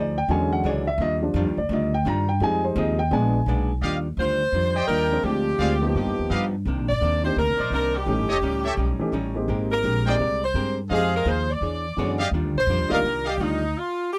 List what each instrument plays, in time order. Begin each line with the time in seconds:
Already playing: upright bass D2, hollow-body jazz guitar F3 D#4 G#4 C5, grand piano D5
0.18 grand piano G5
0.28 upright bass E2, grand piano D3 F#3 G#3 C#4 G#5, hollow-body jazz guitar E3 D4 G#4 C#5
0.53 grand piano F#5
0.64 upright bass C#2, hollow-body jazz guitar E3 D4 G#4 C#5, grand piano D5
0.87 grand piano E5
0.98 upright bass D#2, hollow-body jazz guitar D#3 G3 D4, grand piano D#5
1.02 hollow-body jazz guitar F4
1.22 grand piano F3 G3 D4
1.34 upright bass F2, hollow-body jazz guitar D#3 G3 D4 F4
1.46 upright bass D#2
1.57 upright bass D2, grand piano D5
1.69 upright bass D2, hollow-body jazz guitar D#3 G3 D4 F4
1.73 grand piano D#5
1.94 grand piano G5
2.05 upright bass G2, hollow-body jazz guitar D#3 G3 D4 F4, grand piano A#5
2.29 grand piano G5
2.40 upright bass F2, hollow-body jazz guitar F3 C4 D#4 G#4, grand piano G3 G#3 D#4 G#5
2.64 grand piano C5
2.76 upright bass D#2, hollow-body jazz guitar F3 C4 D#4 G#4, grand piano D#5
2.99 grand piano G5
3.11 upright bass A#1, hollow-body jazz guitar A#2 G#3 B3 D4, grand piano G#3 B3 D4 G#5
3.46 upright bass B1, hollow-body jazz guitar A#2 G#3 B3 D4
3.81 upright bass D#2, hollow-body jazz guitar D#3 G3 D4 F4, trumpet section G4 D5 D#5 F5
4.17 upright bass D2, hollow-body jazz guitar D#3 G3 D4 F4, saxophone section C5
4.52 upright bass F2, hollow-body jazz guitar D#3 G3 D4 F4
4.75 trumpet section G4 D5 D#5 G5
4.88 upright bass D#2, hollow-body jazz guitar D#3 G3 D4 F4, saxophone section A#4
5.11 grand piano F3 G#3 C4 D4 F4
5.23 upright bass D2, hollow-body jazz guitar D3 G#3 C4 F4, saxophone section G4
5.59 upright bass D2, hollow-body jazz guitar D3 G#3 C4 F4, trumpet section G#4 C5 D5 F5
5.81 grand piano F3 A#3 B3 D#4 G4
5.95 upright bass G2, hollow-body jazz guitar G2 F3 B3 D#4, saxophone section G4
6.07 upright bass F2
6.19 upright bass D#2
6.30 upright bass G2, hollow-body jazz guitar G2 F3 B3 D#4, trumpet section G4 B4 D#5 F5
6.65 upright bass C2, hollow-body jazz guitar C3 D#3 A#3 D4
6.78 upright bass A#1
6.89 upright bass G1, saxophone section D5
7.01 upright bass D#2, hollow-body jazz guitar C3 D#3 A#3 D4
7.24 grand piano D#3 A#3 C4 D4 G4, saxophone section C5
7.36 upright bass D2, hollow-body jazz guitar C3 D#3 A#3 D4, saxophone section A#4
7.48 upright bass C2
7.58 upright bass A#1, trumpet section D#4 A#4 C5 D5
7.70 upright bass C2, hollow-body jazz guitar C3 D#3 A#3 D4, saxophone section A#4
7.95 saxophone section G4
8.06 upright bass A1, hollow-body jazz guitar A2 G3 C#4 D#4, grand piano E3 A3 C#4 D#4 G4
8.18 upright bass G1
8.29 upright bass E1, trumpet section G4 A4 C#5 D#5
8.42 upright bass C#2, hollow-body jazz guitar A2 G3 C#4 D#4
8.64 trumpet section G4 A4 C#5 E5
8.77 upright bass B1, hollow-body jazz guitar A2 G3 C#4 D#4
8.99 grand piano E3 A3 C#4 D#4 G4, muted upright bass stroke
9.12 upright bass A1, hollow-body jazz guitar A2 G3 C#4 D#4
9.34 grand piano G#3 A#3 C4 D#4 G4
9.48 upright bass G#1, hollow-body jazz guitar G#3 C4 G4 A#4
9.72 saxophone section A#4
9.84 upright bass A#1, hollow-body jazz guitar G#3 C4 G4 A#4
10.05 grand piano G#3 A#3 C4 D#4 G4, trumpet section G#4 A#4 C5 G5, saxophone section D5
10.19 upright bass C2, hollow-body jazz guitar G#3 C4 G4 A#4
10.44 saxophone section C5
10.54 upright bass G2, hollow-body jazz guitar G#3 C4 G4 A#4
10.90 upright bass F2, hollow-body jazz guitar F3 D#4 G#4 C5, grand piano F3 G#3 C4 D#4 G4, trumpet section G#4 C5 D#5 F5, saxophone section G#4
11.16 saxophone section A#4
11.25 upright bass D#2, hollow-body jazz guitar F3 D#4 G#4 C5, saxophone section C5
11.51 saxophone section D5
11.61 upright bass E2, hollow-body jazz guitar E3 D4 G#4 C#5
11.97 upright bass F#2, grand piano D3 G#3 B3 C#4 F#4, hollow-body jazz guitar E3 D4 G#4 C#5
12.19 trumpet section G4 D5 D#5 F5
12.31 upright bass D#2, hollow-body jazz guitar D#3 G3 D4 F4
12.44 upright bass D2
12.55 upright bass A#1, saxophone section C5
12.67 upright bass F2, hollow-body jazz guitar D#3 G3 D4 F4
12.79 upright bass D#2
12.89 upright bass D2, grand piano D#3 G3 A#3 D4 F4, trumpet section G4 D5 D#5 F5, saxophone section A#4
13.02 upright bass C2, hollow-body jazz guitar D#3 G3 D4 F4
13.25 trumpet section G4 D5 D#5 F5, saxophone section G4
13.38 upright bass D2, hollow-body jazz guitar D#3 G3 D4 F4, saxophone section D#4
13.77 saxophone section F4
14.12 saxophone section G4